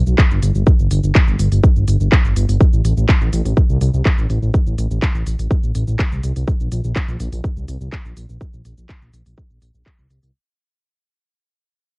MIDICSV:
0, 0, Header, 1, 3, 480
1, 0, Start_track
1, 0, Tempo, 483871
1, 663, Time_signature, 4, 2, 24, 8
1, 11885, End_track
2, 0, Start_track
2, 0, Title_t, "Detuned saw bass"
2, 0, Program_c, 0, 39
2, 70, Note_on_c, 0, 35, 92
2, 148, Note_off_c, 0, 35, 0
2, 310, Note_on_c, 0, 31, 91
2, 388, Note_off_c, 0, 31, 0
2, 424, Note_on_c, 0, 31, 102
2, 509, Note_off_c, 0, 31, 0
2, 549, Note_on_c, 0, 31, 91
2, 628, Note_off_c, 0, 31, 0
2, 789, Note_on_c, 0, 31, 83
2, 867, Note_off_c, 0, 31, 0
2, 906, Note_on_c, 0, 31, 98
2, 990, Note_off_c, 0, 31, 0
2, 1030, Note_on_c, 0, 31, 94
2, 1108, Note_off_c, 0, 31, 0
2, 1270, Note_on_c, 0, 31, 88
2, 1348, Note_off_c, 0, 31, 0
2, 1384, Note_on_c, 0, 31, 98
2, 1469, Note_off_c, 0, 31, 0
2, 1509, Note_on_c, 0, 31, 95
2, 1587, Note_off_c, 0, 31, 0
2, 1748, Note_on_c, 0, 31, 86
2, 1827, Note_off_c, 0, 31, 0
2, 1864, Note_on_c, 0, 31, 101
2, 1949, Note_off_c, 0, 31, 0
2, 1989, Note_on_c, 0, 31, 92
2, 2067, Note_off_c, 0, 31, 0
2, 2230, Note_on_c, 0, 31, 86
2, 2308, Note_off_c, 0, 31, 0
2, 2345, Note_on_c, 0, 31, 103
2, 2430, Note_off_c, 0, 31, 0
2, 2469, Note_on_c, 0, 31, 97
2, 2547, Note_off_c, 0, 31, 0
2, 2708, Note_on_c, 0, 33, 89
2, 2787, Note_off_c, 0, 33, 0
2, 2824, Note_on_c, 0, 33, 100
2, 2909, Note_off_c, 0, 33, 0
2, 2948, Note_on_c, 0, 33, 94
2, 3027, Note_off_c, 0, 33, 0
2, 3187, Note_on_c, 0, 33, 83
2, 3267, Note_off_c, 0, 33, 0
2, 3303, Note_on_c, 0, 33, 105
2, 3389, Note_off_c, 0, 33, 0
2, 3428, Note_on_c, 0, 33, 95
2, 3507, Note_off_c, 0, 33, 0
2, 3668, Note_on_c, 0, 36, 87
2, 3747, Note_off_c, 0, 36, 0
2, 3782, Note_on_c, 0, 36, 105
2, 3868, Note_off_c, 0, 36, 0
2, 3908, Note_on_c, 0, 36, 88
2, 3987, Note_off_c, 0, 36, 0
2, 4147, Note_on_c, 0, 33, 86
2, 4227, Note_off_c, 0, 33, 0
2, 4263, Note_on_c, 0, 33, 101
2, 4349, Note_off_c, 0, 33, 0
2, 4387, Note_on_c, 0, 33, 95
2, 4467, Note_off_c, 0, 33, 0
2, 4627, Note_on_c, 0, 33, 89
2, 4707, Note_off_c, 0, 33, 0
2, 4742, Note_on_c, 0, 33, 106
2, 4828, Note_off_c, 0, 33, 0
2, 4868, Note_on_c, 0, 33, 94
2, 4947, Note_off_c, 0, 33, 0
2, 5108, Note_on_c, 0, 33, 85
2, 5187, Note_off_c, 0, 33, 0
2, 5223, Note_on_c, 0, 33, 100
2, 5309, Note_off_c, 0, 33, 0
2, 5348, Note_on_c, 0, 33, 95
2, 5427, Note_off_c, 0, 33, 0
2, 5589, Note_on_c, 0, 33, 85
2, 5668, Note_off_c, 0, 33, 0
2, 5704, Note_on_c, 0, 33, 104
2, 5789, Note_off_c, 0, 33, 0
2, 5829, Note_on_c, 0, 33, 93
2, 5908, Note_off_c, 0, 33, 0
2, 6070, Note_on_c, 0, 36, 88
2, 6148, Note_off_c, 0, 36, 0
2, 6184, Note_on_c, 0, 36, 102
2, 6269, Note_off_c, 0, 36, 0
2, 6309, Note_on_c, 0, 36, 91
2, 6388, Note_off_c, 0, 36, 0
2, 6549, Note_on_c, 0, 34, 85
2, 6628, Note_off_c, 0, 34, 0
2, 6665, Note_on_c, 0, 34, 106
2, 6750, Note_off_c, 0, 34, 0
2, 6790, Note_on_c, 0, 34, 91
2, 6868, Note_off_c, 0, 34, 0
2, 7028, Note_on_c, 0, 34, 81
2, 7107, Note_off_c, 0, 34, 0
2, 7144, Note_on_c, 0, 34, 96
2, 7229, Note_off_c, 0, 34, 0
2, 7268, Note_on_c, 0, 34, 96
2, 7347, Note_off_c, 0, 34, 0
2, 7508, Note_on_c, 0, 36, 87
2, 7587, Note_off_c, 0, 36, 0
2, 7622, Note_on_c, 0, 36, 102
2, 7708, Note_off_c, 0, 36, 0
2, 7747, Note_on_c, 0, 36, 92
2, 7826, Note_off_c, 0, 36, 0
2, 7987, Note_on_c, 0, 34, 85
2, 8067, Note_off_c, 0, 34, 0
2, 8102, Note_on_c, 0, 34, 102
2, 8188, Note_off_c, 0, 34, 0
2, 8227, Note_on_c, 0, 34, 94
2, 8307, Note_off_c, 0, 34, 0
2, 8468, Note_on_c, 0, 34, 91
2, 8547, Note_off_c, 0, 34, 0
2, 8583, Note_on_c, 0, 34, 104
2, 8668, Note_off_c, 0, 34, 0
2, 8708, Note_on_c, 0, 34, 94
2, 8787, Note_off_c, 0, 34, 0
2, 8947, Note_on_c, 0, 34, 85
2, 9027, Note_off_c, 0, 34, 0
2, 9062, Note_on_c, 0, 34, 102
2, 9148, Note_off_c, 0, 34, 0
2, 9188, Note_on_c, 0, 34, 98
2, 9267, Note_off_c, 0, 34, 0
2, 9428, Note_on_c, 0, 34, 85
2, 9507, Note_off_c, 0, 34, 0
2, 9543, Note_on_c, 0, 34, 101
2, 9628, Note_off_c, 0, 34, 0
2, 9666, Note_on_c, 0, 34, 90
2, 9746, Note_off_c, 0, 34, 0
2, 9907, Note_on_c, 0, 36, 86
2, 9986, Note_off_c, 0, 36, 0
2, 10021, Note_on_c, 0, 36, 103
2, 10108, Note_off_c, 0, 36, 0
2, 10148, Note_on_c, 0, 36, 98
2, 10227, Note_off_c, 0, 36, 0
2, 11885, End_track
3, 0, Start_track
3, 0, Title_t, "Drums"
3, 68, Note_on_c, 9, 82, 35
3, 167, Note_off_c, 9, 82, 0
3, 183, Note_on_c, 9, 36, 127
3, 184, Note_on_c, 9, 39, 108
3, 184, Note_on_c, 9, 82, 45
3, 282, Note_off_c, 9, 36, 0
3, 283, Note_off_c, 9, 39, 0
3, 283, Note_off_c, 9, 82, 0
3, 308, Note_on_c, 9, 82, 32
3, 407, Note_off_c, 9, 82, 0
3, 423, Note_on_c, 9, 46, 115
3, 423, Note_on_c, 9, 82, 81
3, 522, Note_off_c, 9, 46, 0
3, 522, Note_off_c, 9, 82, 0
3, 548, Note_on_c, 9, 82, 33
3, 647, Note_off_c, 9, 82, 0
3, 662, Note_on_c, 9, 82, 43
3, 663, Note_on_c, 9, 36, 127
3, 762, Note_off_c, 9, 36, 0
3, 762, Note_off_c, 9, 82, 0
3, 787, Note_on_c, 9, 82, 30
3, 886, Note_off_c, 9, 82, 0
3, 902, Note_on_c, 9, 46, 112
3, 902, Note_on_c, 9, 82, 77
3, 1001, Note_off_c, 9, 46, 0
3, 1001, Note_off_c, 9, 82, 0
3, 1027, Note_on_c, 9, 82, 32
3, 1126, Note_off_c, 9, 82, 0
3, 1142, Note_on_c, 9, 39, 107
3, 1142, Note_on_c, 9, 82, 42
3, 1143, Note_on_c, 9, 36, 122
3, 1241, Note_off_c, 9, 39, 0
3, 1241, Note_off_c, 9, 82, 0
3, 1242, Note_off_c, 9, 36, 0
3, 1267, Note_on_c, 9, 82, 30
3, 1366, Note_off_c, 9, 82, 0
3, 1382, Note_on_c, 9, 46, 112
3, 1382, Note_on_c, 9, 82, 76
3, 1482, Note_off_c, 9, 46, 0
3, 1482, Note_off_c, 9, 82, 0
3, 1507, Note_on_c, 9, 46, 66
3, 1507, Note_on_c, 9, 82, 36
3, 1606, Note_off_c, 9, 46, 0
3, 1606, Note_off_c, 9, 82, 0
3, 1623, Note_on_c, 9, 36, 127
3, 1623, Note_on_c, 9, 82, 44
3, 1722, Note_off_c, 9, 36, 0
3, 1722, Note_off_c, 9, 82, 0
3, 1748, Note_on_c, 9, 82, 30
3, 1847, Note_off_c, 9, 82, 0
3, 1863, Note_on_c, 9, 46, 110
3, 1863, Note_on_c, 9, 82, 80
3, 1962, Note_off_c, 9, 46, 0
3, 1962, Note_off_c, 9, 82, 0
3, 1988, Note_on_c, 9, 82, 33
3, 2087, Note_off_c, 9, 82, 0
3, 2103, Note_on_c, 9, 36, 123
3, 2103, Note_on_c, 9, 39, 110
3, 2103, Note_on_c, 9, 82, 43
3, 2202, Note_off_c, 9, 36, 0
3, 2202, Note_off_c, 9, 39, 0
3, 2202, Note_off_c, 9, 82, 0
3, 2228, Note_on_c, 9, 82, 33
3, 2327, Note_off_c, 9, 82, 0
3, 2343, Note_on_c, 9, 46, 110
3, 2343, Note_on_c, 9, 82, 79
3, 2442, Note_off_c, 9, 46, 0
3, 2442, Note_off_c, 9, 82, 0
3, 2468, Note_on_c, 9, 46, 66
3, 2468, Note_on_c, 9, 82, 33
3, 2567, Note_off_c, 9, 46, 0
3, 2567, Note_off_c, 9, 82, 0
3, 2583, Note_on_c, 9, 36, 123
3, 2583, Note_on_c, 9, 82, 43
3, 2682, Note_off_c, 9, 36, 0
3, 2682, Note_off_c, 9, 82, 0
3, 2708, Note_on_c, 9, 82, 31
3, 2807, Note_off_c, 9, 82, 0
3, 2824, Note_on_c, 9, 46, 109
3, 2824, Note_on_c, 9, 82, 78
3, 2923, Note_off_c, 9, 46, 0
3, 2923, Note_off_c, 9, 82, 0
3, 2949, Note_on_c, 9, 82, 33
3, 3048, Note_off_c, 9, 82, 0
3, 3063, Note_on_c, 9, 36, 120
3, 3063, Note_on_c, 9, 39, 103
3, 3063, Note_on_c, 9, 82, 43
3, 3162, Note_off_c, 9, 36, 0
3, 3163, Note_off_c, 9, 39, 0
3, 3163, Note_off_c, 9, 82, 0
3, 3188, Note_on_c, 9, 82, 30
3, 3287, Note_off_c, 9, 82, 0
3, 3304, Note_on_c, 9, 46, 109
3, 3304, Note_on_c, 9, 82, 78
3, 3403, Note_off_c, 9, 46, 0
3, 3403, Note_off_c, 9, 82, 0
3, 3429, Note_on_c, 9, 46, 65
3, 3429, Note_on_c, 9, 82, 36
3, 3528, Note_off_c, 9, 46, 0
3, 3528, Note_off_c, 9, 82, 0
3, 3543, Note_on_c, 9, 36, 125
3, 3543, Note_on_c, 9, 82, 44
3, 3642, Note_off_c, 9, 36, 0
3, 3642, Note_off_c, 9, 82, 0
3, 3667, Note_on_c, 9, 82, 31
3, 3766, Note_off_c, 9, 82, 0
3, 3783, Note_on_c, 9, 46, 107
3, 3783, Note_on_c, 9, 82, 78
3, 3882, Note_off_c, 9, 46, 0
3, 3882, Note_off_c, 9, 82, 0
3, 3908, Note_on_c, 9, 82, 34
3, 4007, Note_off_c, 9, 82, 0
3, 4023, Note_on_c, 9, 36, 125
3, 4023, Note_on_c, 9, 39, 101
3, 4023, Note_on_c, 9, 82, 43
3, 4122, Note_off_c, 9, 36, 0
3, 4122, Note_off_c, 9, 39, 0
3, 4122, Note_off_c, 9, 82, 0
3, 4148, Note_on_c, 9, 82, 31
3, 4247, Note_off_c, 9, 82, 0
3, 4263, Note_on_c, 9, 46, 113
3, 4263, Note_on_c, 9, 82, 76
3, 4362, Note_off_c, 9, 46, 0
3, 4362, Note_off_c, 9, 82, 0
3, 4388, Note_on_c, 9, 82, 35
3, 4487, Note_off_c, 9, 82, 0
3, 4503, Note_on_c, 9, 36, 122
3, 4503, Note_on_c, 9, 82, 45
3, 4602, Note_off_c, 9, 36, 0
3, 4603, Note_off_c, 9, 82, 0
3, 4628, Note_on_c, 9, 82, 31
3, 4727, Note_off_c, 9, 82, 0
3, 4744, Note_on_c, 9, 46, 105
3, 4744, Note_on_c, 9, 82, 81
3, 4843, Note_off_c, 9, 46, 0
3, 4843, Note_off_c, 9, 82, 0
3, 4869, Note_on_c, 9, 82, 34
3, 4968, Note_off_c, 9, 82, 0
3, 4983, Note_on_c, 9, 36, 109
3, 4984, Note_on_c, 9, 39, 101
3, 4984, Note_on_c, 9, 82, 44
3, 5082, Note_off_c, 9, 36, 0
3, 5083, Note_off_c, 9, 39, 0
3, 5083, Note_off_c, 9, 82, 0
3, 5109, Note_on_c, 9, 82, 30
3, 5208, Note_off_c, 9, 82, 0
3, 5223, Note_on_c, 9, 46, 99
3, 5223, Note_on_c, 9, 82, 82
3, 5323, Note_off_c, 9, 46, 0
3, 5323, Note_off_c, 9, 82, 0
3, 5349, Note_on_c, 9, 46, 63
3, 5349, Note_on_c, 9, 82, 35
3, 5448, Note_off_c, 9, 46, 0
3, 5448, Note_off_c, 9, 82, 0
3, 5463, Note_on_c, 9, 36, 120
3, 5464, Note_on_c, 9, 82, 47
3, 5562, Note_off_c, 9, 36, 0
3, 5563, Note_off_c, 9, 82, 0
3, 5588, Note_on_c, 9, 82, 32
3, 5688, Note_off_c, 9, 82, 0
3, 5703, Note_on_c, 9, 46, 104
3, 5703, Note_on_c, 9, 82, 85
3, 5803, Note_off_c, 9, 46, 0
3, 5803, Note_off_c, 9, 82, 0
3, 5827, Note_on_c, 9, 82, 36
3, 5927, Note_off_c, 9, 82, 0
3, 5943, Note_on_c, 9, 36, 124
3, 5943, Note_on_c, 9, 39, 103
3, 5943, Note_on_c, 9, 82, 46
3, 6042, Note_off_c, 9, 36, 0
3, 6042, Note_off_c, 9, 39, 0
3, 6042, Note_off_c, 9, 82, 0
3, 6068, Note_on_c, 9, 82, 34
3, 6167, Note_off_c, 9, 82, 0
3, 6183, Note_on_c, 9, 46, 103
3, 6183, Note_on_c, 9, 82, 77
3, 6282, Note_off_c, 9, 46, 0
3, 6282, Note_off_c, 9, 82, 0
3, 6308, Note_on_c, 9, 46, 61
3, 6308, Note_on_c, 9, 82, 34
3, 6408, Note_off_c, 9, 46, 0
3, 6408, Note_off_c, 9, 82, 0
3, 6423, Note_on_c, 9, 36, 115
3, 6423, Note_on_c, 9, 82, 47
3, 6522, Note_off_c, 9, 36, 0
3, 6522, Note_off_c, 9, 82, 0
3, 6547, Note_on_c, 9, 82, 34
3, 6646, Note_off_c, 9, 82, 0
3, 6663, Note_on_c, 9, 46, 107
3, 6663, Note_on_c, 9, 82, 82
3, 6762, Note_off_c, 9, 46, 0
3, 6762, Note_off_c, 9, 82, 0
3, 6787, Note_on_c, 9, 82, 37
3, 6886, Note_off_c, 9, 82, 0
3, 6902, Note_on_c, 9, 36, 106
3, 6902, Note_on_c, 9, 39, 110
3, 6902, Note_on_c, 9, 82, 46
3, 7001, Note_off_c, 9, 39, 0
3, 7001, Note_off_c, 9, 82, 0
3, 7002, Note_off_c, 9, 36, 0
3, 7027, Note_on_c, 9, 82, 32
3, 7126, Note_off_c, 9, 82, 0
3, 7143, Note_on_c, 9, 46, 106
3, 7143, Note_on_c, 9, 82, 83
3, 7242, Note_off_c, 9, 46, 0
3, 7242, Note_off_c, 9, 82, 0
3, 7267, Note_on_c, 9, 46, 62
3, 7267, Note_on_c, 9, 82, 36
3, 7366, Note_off_c, 9, 46, 0
3, 7366, Note_off_c, 9, 82, 0
3, 7382, Note_on_c, 9, 36, 120
3, 7383, Note_on_c, 9, 82, 49
3, 7481, Note_off_c, 9, 36, 0
3, 7482, Note_off_c, 9, 82, 0
3, 7508, Note_on_c, 9, 82, 33
3, 7607, Note_off_c, 9, 82, 0
3, 7622, Note_on_c, 9, 46, 109
3, 7622, Note_on_c, 9, 82, 84
3, 7722, Note_off_c, 9, 46, 0
3, 7722, Note_off_c, 9, 82, 0
3, 7748, Note_on_c, 9, 82, 36
3, 7847, Note_off_c, 9, 82, 0
3, 7862, Note_on_c, 9, 36, 111
3, 7863, Note_on_c, 9, 39, 110
3, 7863, Note_on_c, 9, 82, 48
3, 7961, Note_off_c, 9, 36, 0
3, 7962, Note_off_c, 9, 39, 0
3, 7962, Note_off_c, 9, 82, 0
3, 7988, Note_on_c, 9, 82, 34
3, 8087, Note_off_c, 9, 82, 0
3, 8102, Note_on_c, 9, 46, 108
3, 8102, Note_on_c, 9, 82, 81
3, 8202, Note_off_c, 9, 46, 0
3, 8202, Note_off_c, 9, 82, 0
3, 8227, Note_on_c, 9, 82, 37
3, 8326, Note_off_c, 9, 82, 0
3, 8342, Note_on_c, 9, 36, 120
3, 8342, Note_on_c, 9, 82, 48
3, 8441, Note_off_c, 9, 36, 0
3, 8441, Note_off_c, 9, 82, 0
3, 8467, Note_on_c, 9, 82, 35
3, 8566, Note_off_c, 9, 82, 0
3, 8582, Note_on_c, 9, 46, 100
3, 8582, Note_on_c, 9, 82, 87
3, 8681, Note_off_c, 9, 46, 0
3, 8681, Note_off_c, 9, 82, 0
3, 8707, Note_on_c, 9, 82, 35
3, 8806, Note_off_c, 9, 82, 0
3, 8822, Note_on_c, 9, 36, 110
3, 8822, Note_on_c, 9, 39, 107
3, 8822, Note_on_c, 9, 82, 47
3, 8921, Note_off_c, 9, 36, 0
3, 8921, Note_off_c, 9, 39, 0
3, 8921, Note_off_c, 9, 82, 0
3, 8947, Note_on_c, 9, 82, 33
3, 9046, Note_off_c, 9, 82, 0
3, 9062, Note_on_c, 9, 46, 103
3, 9062, Note_on_c, 9, 82, 82
3, 9161, Note_off_c, 9, 46, 0
3, 9161, Note_off_c, 9, 82, 0
3, 9187, Note_on_c, 9, 46, 65
3, 9187, Note_on_c, 9, 82, 39
3, 9286, Note_off_c, 9, 46, 0
3, 9286, Note_off_c, 9, 82, 0
3, 9302, Note_on_c, 9, 36, 122
3, 9302, Note_on_c, 9, 82, 51
3, 9401, Note_off_c, 9, 36, 0
3, 9401, Note_off_c, 9, 82, 0
3, 9427, Note_on_c, 9, 82, 34
3, 9526, Note_off_c, 9, 82, 0
3, 9542, Note_on_c, 9, 46, 107
3, 9542, Note_on_c, 9, 82, 85
3, 9641, Note_off_c, 9, 46, 0
3, 9641, Note_off_c, 9, 82, 0
3, 9666, Note_on_c, 9, 82, 36
3, 9766, Note_off_c, 9, 82, 0
3, 9781, Note_on_c, 9, 36, 117
3, 9782, Note_on_c, 9, 39, 112
3, 9782, Note_on_c, 9, 82, 48
3, 9881, Note_off_c, 9, 36, 0
3, 9881, Note_off_c, 9, 39, 0
3, 9881, Note_off_c, 9, 82, 0
3, 9908, Note_on_c, 9, 82, 35
3, 10007, Note_off_c, 9, 82, 0
3, 10022, Note_on_c, 9, 46, 105
3, 10022, Note_on_c, 9, 82, 81
3, 10121, Note_off_c, 9, 46, 0
3, 10121, Note_off_c, 9, 82, 0
3, 10147, Note_on_c, 9, 46, 64
3, 10147, Note_on_c, 9, 82, 36
3, 10246, Note_off_c, 9, 46, 0
3, 10246, Note_off_c, 9, 82, 0
3, 11885, End_track
0, 0, End_of_file